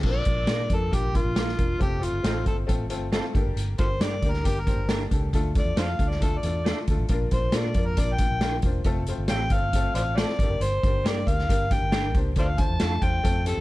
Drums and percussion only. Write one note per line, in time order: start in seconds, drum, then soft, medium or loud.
0.03 kick medium
0.03 crash medium
0.25 kick medium
0.25 closed hi-hat medium
0.47 snare loud
0.47 closed hi-hat medium
0.70 kick medium
0.70 closed hi-hat medium
0.93 kick medium
0.93 closed hi-hat loud
1.15 kick medium
1.15 closed hi-hat medium
1.36 snare loud
1.36 closed hi-hat medium
1.48 snare soft
1.59 kick medium
1.59 closed hi-hat medium
1.81 kick medium
1.81 closed hi-hat medium
2.03 closed hi-hat medium
2.24 snare loud
2.24 closed hi-hat loud
2.46 kick medium
2.46 closed hi-hat medium
2.69 kick medium
2.69 closed hi-hat loud
2.90 closed hi-hat medium
3.13 snare loud
3.13 closed hi-hat medium
3.35 kick medium
3.35 closed hi-hat medium
3.57 closed hi-hat medium
3.78 kick loud
3.78 closed hi-hat medium
4.01 snare loud
4.01 closed hi-hat loud
4.22 kick medium
4.22 closed hi-hat medium
4.33 snare soft
4.45 kick medium
4.45 closed hi-hat loud
4.67 kick medium
4.67 closed hi-hat medium
4.89 snare loud
4.89 closed hi-hat medium
5.11 kick medium
5.11 closed hi-hat medium
5.33 kick medium
5.33 closed hi-hat medium
5.55 kick medium
5.55 closed hi-hat medium
5.77 snare loud
5.77 closed hi-hat loud
5.99 kick medium
5.99 closed hi-hat medium
6.11 snare soft
6.22 kick medium
6.22 closed hi-hat medium
6.43 closed hi-hat medium
6.66 snare loud
6.66 closed hi-hat medium
6.88 kick medium
6.88 closed hi-hat medium
7.09 kick medium
7.09 closed hi-hat medium
7.31 kick medium
7.31 closed hi-hat medium
7.52 snare loud
7.52 closed hi-hat loud
7.74 kick medium
7.74 closed hi-hat medium
7.97 kick medium
7.97 closed hi-hat loud
8.18 kick medium
8.18 closed hi-hat medium
8.41 snare loud
8.41 closed hi-hat medium
8.62 kick medium
8.62 closed hi-hat medium
8.84 kick medium
8.84 closed hi-hat medium
9.07 closed hi-hat medium
9.28 snare loud
9.28 closed hi-hat loud
9.50 kick medium
9.50 closed hi-hat medium
9.73 kick medium
9.73 closed hi-hat loud
9.95 closed hi-hat medium
10.18 snare loud
10.18 closed hi-hat medium
10.29 snare soft
10.39 kick medium
10.39 closed hi-hat medium
10.61 closed hi-hat medium
10.83 kick loud
10.83 closed hi-hat medium
11.06 snare loud
11.06 closed hi-hat loud
11.27 kick medium
11.27 closed hi-hat medium
11.39 snare soft
11.49 kick medium
11.49 closed hi-hat loud
11.71 kick medium
11.71 closed hi-hat medium
11.92 snare loud
11.92 closed hi-hat medium
12.15 kick medium
12.15 closed hi-hat medium
12.36 kick medium
12.36 closed hi-hat medium
12.58 kick loud
12.58 closed hi-hat medium
12.80 snare loud
12.80 closed hi-hat loud
13.02 kick medium
13.02 closed hi-hat medium
13.25 kick medium
13.25 closed hi-hat loud
13.46 closed hi-hat medium